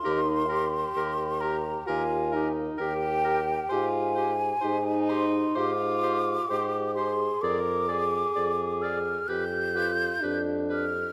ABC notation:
X:1
M:4/4
L:1/8
Q:1/4=65
K:Eb
V:1 name="Flute"
c'3 b a z g2 | [K:Ablyd] a3 c' d'3 c' | d'3 f' g'3 f' |]
V:2 name="Oboe"
B B B B B B B B | [K:Ablyd] c c c c c c c c | d d d d =B B B B |]
V:3 name="Clarinet"
G G G G G G G G | [K:Ablyd] G G G G G G G G | A A A A G G G G |]
V:4 name="French horn"
E G3 F E G2 | [K:Ablyd] F z E2 F2 G A | B A3 G F D z |]
V:5 name="Bassoon" clef=bass
E,,2 E,,2 E,,2 E,,2 | [K:Ablyd] A,,2 A,,2 A,,2 A,,2 | F,,2 F,,2 F,,2 F,,2 |]